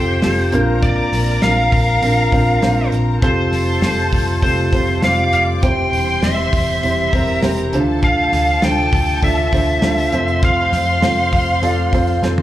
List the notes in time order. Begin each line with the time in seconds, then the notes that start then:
Already playing: F1 C4 F4 G4 A4 C5 G5
0.22 F1 C4 F4 G4 A4, snare, hi-hat pedal, open hi-hat
0.52 A#1 A#2 C4 D4 F4 A#4 A#5, hi-hat pedal, open hi-hat
0.83 D5, kick, hi-hat pedal, open hi-hat
1.12 A#1, snare, hi-hat pedal, open hi-hat
1.42 A#1 C4 D4 F4 A#4 F5, snare, hi-hat pedal, open hi-hat
1.72 A#1, kick, hi-hat pedal, open hi-hat
2.02 A#1 C4 D4 F4 A#4, hi-hat pedal, open hi-hat
2.32 A#1 C4 D4 F4 A#4, kick, hi-hat pedal, open hi-hat
2.61 A#1 C4 D4 F4 C5, snare, hi-hat pedal, open hi-hat
2.92 A#1, hi-hat pedal, open hi-hat
3.22 F1 C3 G3 A3 C4 F4 G4 A4 C5 A5, kick, hi-hat pedal, open hi-hat
3.52 F1, snare, hi-hat pedal, open hi-hat
3.82 F1 C4 F4 G4 A4, snare, hi-hat pedal, open hi-hat
4.13 F1, kick, hi-hat pedal, open hi-hat
4.42 F1 C4 F4 G4 A4 C5, kick, hi-hat pedal, open hi-hat
4.72 F1 C4 F4 G4 C5, kick, hi-hat pedal, open hi-hat
4.87 open hi-hat
5.02 F1 C4 F4 G4 C5 D5 F5 D6, snare, hi-hat pedal, open hi-hat
5.18 hi-hat pedal
5.32 F1 F5, hi-hat pedal, open hi-hat
5.62 E1 E3 G3 C4 E4 G4 C5 G5 C6, kick, hi-hat pedal, open hi-hat
5.93 E1, hi-hat pedal, open hi-hat
6.22 E1 C4 E4 G4 D5 E5, snare, hi-hat pedal, open hi-hat
6.53 E1, kick, hi-hat pedal, open hi-hat
6.83 E1 C4 E4 G4 C5, hi-hat pedal, open hi-hat
7.13 E1 C4 E4 G4 A#4 C5 A#5, kick, hi-hat pedal, open hi-hat
7.27 open hi-hat
7.42 E1 C4 E4 G4 C5, snare, hi-hat pedal, open hi-hat
7.58 hi-hat pedal
7.73 D2 D3 F3 A3 D4 F4 A4 C5 A5, hi-hat pedal, open hi-hat
8.03 F5, kick, hi-hat pedal, open hi-hat
8.32 D2, snare, hi-hat pedal, open hi-hat
8.62 D2 D4 F4 A4 C5 G5, snare, hi-hat pedal, open hi-hat
8.93 D2, kick, hi-hat pedal, open hi-hat
9.22 D2 D4 F4 A4 D5 E5, kick, hi-hat pedal, open hi-hat
9.52 D2 D4 F4 A4 C5, kick, hi-hat pedal, open hi-hat
9.67 open hi-hat
9.82 D2 D4 F4 A4 C5, snare, hi-hat pedal, open hi-hat
9.97 hi-hat pedal, open hi-hat
10.12 F2 F3 C4 F4 A4 C5 C6, hi-hat pedal, open hi-hat
10.28 hi-hat pedal
10.43 F5, kick, hi-hat pedal, open hi-hat
10.72 F2, snare, hi-hat pedal, open hi-hat
11.02 F2 C4 F4 A4 C5, snare, hi-hat pedal, open hi-hat
11.32 F2, kick, hi-hat pedal, open hi-hat
11.61 F2 C4 F4 A4 D5, hi-hat pedal, open hi-hat
11.92 F2 C4 F4 A4 C5, kick, hi-hat pedal, open hi-hat
12.07 open hi-hat
12.22 F2 C4 F4 A4 C5, snare
12.38 high tom